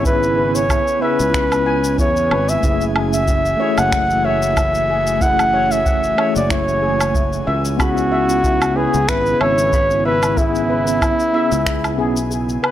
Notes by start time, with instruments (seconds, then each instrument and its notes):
Already playing: fretless electric bass G#1, analog synth pad C#3 C#4 E4 G#5
0.02 tine electric piano B3 C#4 E4, steel pan E4, flugelhorn B4, kick, shaker
0.07 tine electric piano G#4
0.23 shaker
0.38 steel pan B4
0.55 flugelhorn C#5, shaker
0.70 steel pan E4, kick, low woodblock, shaker
0.88 shaker
0.99 tine electric piano B3 C#4 E4, flugelhorn B4, steel pan E5
1.04 tine electric piano G#4
1.20 fretless electric bass C#2, shaker
1.34 steel pan B5, finger snap, kick, shaker
1.52 low woodblock, shaker
1.66 steel pan G#5
1.84 shaker
1.99 fretless electric bass E2, steel pan E4, flugelhorn C#5, kick, shaker
2.16 shaker
2.31 fretless electric bass G#1, steel pan B4, low woodblock
2.49 flugelhorn E5, shaker
2.61 fretless electric bass F#1, analog synth pad E3 A3 F#4, tine electric piano A3 C#4 E4, steel pan E4, kick, shaker
2.66 tine electric piano G#4
2.81 shaker
2.95 steel pan G#4, low woodblock
3.13 flugelhorn E5, shaker
3.28 steel pan E4, kick, shaker
3.45 shaker
3.57 tine electric piano A3 C#4 E4, steel pan C#5
3.63 tine electric piano G#4
3.78 fretless electric bass F#1, flugelhorn F#5, low woodblock, shaker
3.92 steel pan F#5, finger snap, kick, shaker
4.10 shaker
4.25 steel pan C#5, flugelhorn E5
4.42 shaker
4.57 steel pan E4, kick, low woodblock, shaker
4.75 shaker
4.89 steel pan G#4
5.07 shaker
5.19 tine electric piano A3 C#4 E4, steel pan E4, flugelhorn F#5, kick, shaker
5.24 tine electric piano G#4
5.39 low woodblock, shaker
5.54 steel pan C#5
5.71 flugelhorn E5, shaker
5.86 steel pan F#5, kick, shaker
6.04 shaker
6.16 tine electric piano A3 C#4 E4, steel pan C#5, low woodblock
6.21 tine electric piano G#4
6.36 fretless electric bass F#1, flugelhorn D5, shaker
6.50 steel pan E4, flugelhorn C#5, finger snap, kick, shaker
6.68 shaker
6.83 steel pan G#4
7.01 low woodblock, shaker
7.15 steel pan E4, kick, shaker
7.33 shaker
7.47 fretless electric bass C#2, analog synth pad C#3 B3 E4, steel pan E5
7.65 shaker
7.77 tine electric piano B3 C#4 E4, flugelhorn F#4, steel pan B5, kick, low woodblock, shaker
7.82 tine electric piano G#4
7.97 shaker
8.12 steel pan E5
8.29 shaker
8.44 steel pan E4, kick, shaker
8.62 low woodblock, shaker
8.74 tine electric piano B3 C#4 E4, flugelhorn G#4, steel pan B4
8.79 tine electric piano G#4
8.94 fretless electric bass C#2, shaker
9.08 fretless electric bass G#1, steel pan E4, flugelhorn B4, finger snap, kick, shaker
9.26 shaker
9.41 fretless electric bass G#1, flugelhorn C#5, steel pan E5, low woodblock
9.58 shaker
9.73 steel pan B5, kick, shaker
9.91 shaker
10.05 flugelhorn B4, steel pan E5
10.23 low woodblock, shaker
10.35 tine electric piano B3 C#4 E4, steel pan E4, flugelhorn E4, kick, shaker
10.40 tine electric piano G#4
10.55 shaker
10.70 steel pan B4
10.87 shaker
11.02 steel pan E4, kick, low woodblock, shaker
11.20 shaker
11.33 tine electric piano B3 C#4 E4 G#4, steel pan E5
11.52 fretless electric bass C#2, shaker
11.66 steel pan B5, finger snap, kick, shaker
11.84 low woodblock, shaker
11.98 fretless electric bass B1, tine electric piano B3 C#4 E4 G#4, steel pan G#4
12.17 shaker
12.31 steel pan G#4, shaker
12.49 shaker
12.63 steel pan B4, low woodblock